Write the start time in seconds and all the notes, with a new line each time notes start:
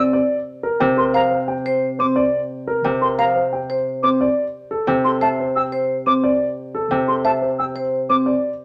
Already playing: C3 C4 D5
0.13 D5
0.63 A#4
0.80 C3 G5
0.97 A#4 C6
1.14 C5 F5 A#5
1.31 C5
1.48 G5
1.66 C5
1.99 C4 C5 D6
2.16 D5
2.67 A#4
2.84 C3 G5
3.01 A#4 C6
3.18 C5 F5 A#5
3.36 C5
3.53 G5
3.70 C5
4.03 C4 C5 D6
4.21 D5
4.71 A4
4.87 C3 G5
5.04 A4 C6
5.21 C5 E5 A5
5.40 C5
5.56 G5 E6
5.72 C5
6.06 C4 C5 D6
6.24 D5
6.75 A4
6.91 C3 G5
7.08 A4 C6
7.25 C5 E5 A5
7.42 C5
7.59 G5 E6
7.76 C5
8.09 C4 C5 D6
8.26 D5